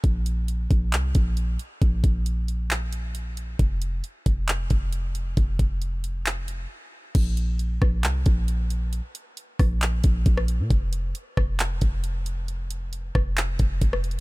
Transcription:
0.04 808-style bass A#1, kick, closed hi-hat
0.26 closed hi-hat
0.48 closed hi-hat
0.71 808-style bass A#1, kick, closed hi-hat
0.93 808-style bass C2, clap, closed hi-hat
1.15 808-style bass A#1, kick, closed hi-hat
1.37 closed hi-hat
1.59 closed hi-hat
1.82 808-style bass A#1, kick, closed hi-hat
2.04 808-style bass A#1, kick, closed hi-hat
2.26 closed hi-hat
2.48 closed hi-hat
2.71 clap, closed hi-hat
2.92 closed hi-hat
3.15 closed hi-hat
3.37 closed hi-hat
3.59 808-style bass F1, kick, closed hi-hat
3.82 closed hi-hat
4.04 closed hi-hat
4.26 808-style bass F1, kick, closed hi-hat
4.48 clap, closed hi-hat
4.70 808-style bass F1, kick, closed hi-hat
4.93 closed hi-hat
5.15 closed hi-hat
5.37 808-style bass F1, kick, closed hi-hat
5.59 808-style bass F1, kick, closed hi-hat
5.82 closed hi-hat
6.04 closed hi-hat
6.26 clap, closed hi-hat
6.48 closed hi-hat
7.15 808-style bass A#1, kick, closed hi-hat, crash
7.37 closed hi-hat
7.59 closed hi-hat
7.82 808-style bass A#1, kick, cross-stick
8.04 808-style bass C2, clap, closed hi-hat
8.26 808-style bass A#1, kick, closed hi-hat
8.48 closed hi-hat
8.70 closed hi-hat
8.93 closed hi-hat
9.15 closed hi-hat
9.37 closed hi-hat
9.59 808-style bass A#1, kick, cross-stick, open hi-hat
9.82 clap, closed hi-hat
10.04 808-style bass A#1, kick, closed hi-hat
10.26 808-style bass A#1, kick, closed hi-hat
10.37 cross-stick
10.48 closed hi-hat
10.59 808-style bass A#2
10.70 808-style bass F1, kick, closed hi-hat
10.93 closed hi-hat
11.15 closed hi-hat
11.37 808-style bass F1, kick, cross-stick
11.59 clap, closed hi-hat
11.81 808-style bass F1, kick, closed hi-hat
12.04 closed hi-hat
12.26 closed hi-hat
12.48 closed hi-hat
12.71 closed hi-hat
12.93 closed hi-hat
13.15 808-style bass F1, kick, cross-stick
13.37 clap, closed hi-hat
13.59 808-style bass F1, kick, closed hi-hat
13.81 808-style bass F1, kick, closed hi-hat
13.93 cross-stick
14.04 closed hi-hat
14.11 closed hi-hat

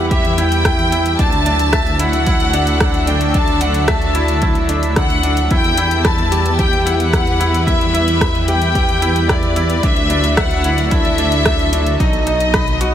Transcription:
Already playing: detuned saw bass E2, analog synth pad G3 E4 B4 E5, grand piano E4 G4 B5
0.11 grand piano G4, violin section E5, kick, closed hi-hat
0.25 closed hi-hat
0.38 grand piano E4, violin section G5, closed hi-hat
0.52 closed hi-hat
0.65 grand piano E4, kick, cross-stick, closed hi-hat
0.79 closed hi-hat
0.92 grand piano E4, closed hi-hat
1.06 closed hi-hat
1.19 detuned saw bass D2, analog synth pad F#3, grand piano D4, violin section A5, kick, closed hi-hat
1.32 closed hi-hat
1.46 grand piano D4, closed hi-hat
1.59 closed hi-hat
1.73 analog synth pad D4, grand piano E5, kick, cross-stick, closed hi-hat
1.87 closed hi-hat
1.99 grand piano E4, violin section F#5, closed hi-hat
2.13 closed hi-hat
2.26 grand piano E4, kick, closed hi-hat
2.37 analog synth pad A4, closed hi-hat
2.53 grand piano D4, closed hi-hat
2.67 closed hi-hat
2.80 grand piano D4, kick, cross-stick, closed hi-hat
2.94 closed hi-hat
3.06 grand piano D4, violin section G5, closed hi-hat
3.21 closed hi-hat
3.34 grand piano D4, violin section A5, kick, closed hi-hat
3.48 closed hi-hat
3.61 grand piano D4, violin section F#5, closed hi-hat
3.74 closed hi-hat
3.88 grand piano E5, violin section A5, kick, cross-stick, closed hi-hat
4.02 closed hi-hat
4.15 grand piano E4, closed hi-hat
4.28 closed hi-hat
4.42 grand piano E4, kick, closed hi-hat
4.55 closed hi-hat
4.69 grand piano D4, closed hi-hat
4.83 closed hi-hat
4.96 grand piano D4, violin section F#5, kick, cross-stick, closed hi-hat
5.10 closed hi-hat
5.23 grand piano D4, closed hi-hat
5.37 closed hi-hat
5.50 detuned saw bass E2, analog synth pad G3, grand piano E4, violin section G5, kick, closed hi-hat
5.64 closed hi-hat
5.72 analog synth pad E4
5.77 grand piano E4, closed hi-hat
5.84 analog synth pad B4
5.91 closed hi-hat
6.05 violin section A5, grand piano B5, kick, cross-stick, closed hi-hat
6.18 closed hi-hat
6.32 grand piano G4, closed hi-hat
6.46 closed hi-hat
6.59 grand piano G4, violin section G5, kick, closed hi-hat
6.73 closed hi-hat
6.86 grand piano E4, violin section F#5, closed hi-hat
6.93 violin section G5
6.99 violin section F#5, closed hi-hat
7.13 grand piano E4, kick, cross-stick, closed hi-hat
7.27 closed hi-hat
7.40 grand piano E4, closed hi-hat
7.54 closed hi-hat
7.67 grand piano E4, violin section E5, kick, closed hi-hat
7.81 closed hi-hat
7.94 grand piano E4, closed hi-hat
8.08 closed hi-hat
8.21 grand piano B5, kick, cross-stick, closed hi-hat
8.35 closed hi-hat
8.48 grand piano G4, violin section G5, closed hi-hat
8.62 closed hi-hat
8.75 grand piano G4, kick, closed hi-hat
8.89 closed hi-hat
9.02 grand piano E4, closed hi-hat
9.16 closed hi-hat
9.29 grand piano E4, violin section D5, kick, cross-stick, closed hi-hat
9.43 closed hi-hat
9.56 grand piano E4, closed hi-hat
9.70 closed hi-hat
9.83 detuned saw bass D2, analog synth pad F#3, grand piano D4, violin section E5, kick, closed hi-hat
9.90 analog synth pad D4
9.96 closed hi-hat
10.10 grand piano D4, closed hi-hat
10.24 closed hi-hat
10.37 grand piano E5, violin section F#5, kick, cross-stick, closed hi-hat
10.51 closed hi-hat
10.64 grand piano E4, closed hi-hat
10.70 analog synth pad A4
10.78 closed hi-hat
10.91 grand piano E4, violin section E5, kick, closed hi-hat
11.05 closed hi-hat
11.18 grand piano D4, closed hi-hat
11.32 closed hi-hat
11.46 grand piano D4, kick, cross-stick, closed hi-hat
11.59 closed hi-hat
11.73 grand piano D4, closed hi-hat
11.86 closed hi-hat
11.99 detuned saw bass B1, grand piano D#4, violin section D#5, kick, closed hi-hat
12.07 analog synth pad D#4
12.13 closed hi-hat
12.27 grand piano D#4, closed hi-hat
12.40 closed hi-hat
12.54 grand piano B5, kick, cross-stick, closed hi-hat
12.64 analog synth pad D#5, closed hi-hat
12.81 grand piano F#4, closed hi-hat

